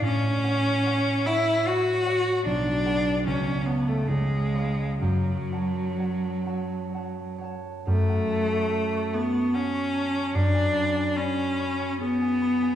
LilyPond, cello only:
\new Staff \with { instrumentName = "Cello" } { \time 3/4 \key fis \minor \tempo 4 = 73 cis'4. e'8 fis'4 | d'4 cis'8 b16 a16 gis4 | fis2~ fis8 r8 | a4. b8 cis'4 |
d'4 cis'4 b4 | }